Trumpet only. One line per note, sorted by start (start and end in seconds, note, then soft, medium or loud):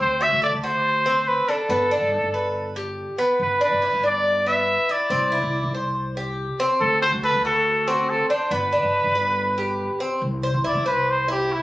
0.01 0.24 C5 loud
0.23 0.43 E5 loud
0.44 0.53 D5 loud
0.64 1.29 C5 loud
1.28 1.50 B4 medium
1.49 2.76 A4 medium
3.42 3.61 B4 medium
3.64 4.02 B4 loud
4.06 4.49 D5 loud
4.48 4.93 E5 loud
4.92 5.75 D5 medium
6.81 7.01 A4 medium
7.02 7.12 C5 loud
7.24 7.43 B4 loud
7.45 7.90 A4 loud
7.88 8.11 F#4 medium
8.10 8.29 A4 medium
8.30 8.54 C5 medium
8.53 10.02 B4 loud
10.67 10.86 D5 medium
10.87 11.12 B4 medium
11.11 11.30 C5 loud
11.31 11.54 G4 medium
11.53 11.62 E4 medium